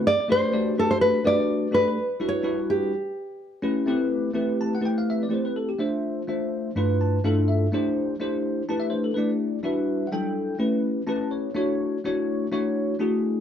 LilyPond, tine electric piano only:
\new Staff \with { instrumentName = "Tine electric piano" } { \time 4/4 \key a \minor \tempo 4 = 125 << { r1 | r1 | r4. a''16 fis''16 g''16 f''16 e''16 d''16 c''16 b'16 a'16 g'16 | f'2 r8 a''8 f''8 e''8 |
r2 a''16 e''16 c''16 a'16 b'8 r8 | e''4 <fis'' g''>4 r4 a''8 cis''8 | r1 | } \\ { r8 <a d' fis' g' b'>8 <a d' fis' g' d''>8 <a d' fis' g' b'>4 <a d' fis' g' d''>4 <a d' fis' g' a'>8 | r8 <g d' e' fis' b'>8 <g d' e' fis' b'>4 r4. <a cis' e' g' b'>8 | <a c' e' g' b'>4 <a c' e' g' b'>4 <a c' e' g' b'>4 <a c' e' g' b'>4 | <a d' c'' e''>4 <a d' f' c'' e''>4 <g, a d' e' f' b'>4 <g, a d' e' f' a'>4 |
<a d' e' g' c''>4 <a d' e' g' c''>4 <a d' e' g' b'>4 <a d' e' g' d''>4 | <g d' e' fis' b'>4 <fis g d' e' a'>4 <a cis' e' g' b'>4 <a cis' e' g' b'>4 | <a d' e' fis' cis''>4 <a d' e' fis' cis''>4 <a d' e' fis' cis''>4 <a d' e' fis' gis'>4 | } >> }